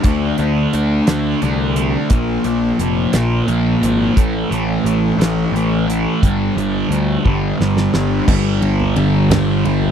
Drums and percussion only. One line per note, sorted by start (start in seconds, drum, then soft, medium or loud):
0.04 kick loud
0.04 closed hi-hat medium
0.04 crash medium
0.38 closed hi-hat medium
0.73 closed hi-hat medium
1.07 snare loud
1.07 closed hi-hat medium
1.42 closed hi-hat medium
1.76 closed hi-hat medium
2.10 kick loud
2.10 closed hi-hat medium
2.44 closed hi-hat medium
2.79 closed hi-hat medium
3.13 snare loud
3.13 closed hi-hat medium
3.48 closed hi-hat medium
3.83 closed hi-hat medium
4.17 kick loud
4.17 closed hi-hat medium
4.52 closed hi-hat medium
4.86 closed hi-hat medium
5.21 snare loud
5.21 closed hi-hat medium
5.56 closed hi-hat medium
5.90 closed hi-hat medium
6.23 kick loud
6.23 closed hi-hat medium
6.58 closed hi-hat medium
6.92 closed hi-hat medium
7.25 kick medium
7.25 high tom soft
7.61 snare medium
7.77 snare medium
7.94 snare medium
8.28 kick loud
8.28 crash loud
8.28 high conga loud
8.28 low conga loud
8.62 ride medium
8.80 low conga medium
8.96 ride medium
9.30 snare loud
9.30 ride loud
9.30 high conga medium
9.30 low conga loud
9.65 ride medium
9.83 low conga medium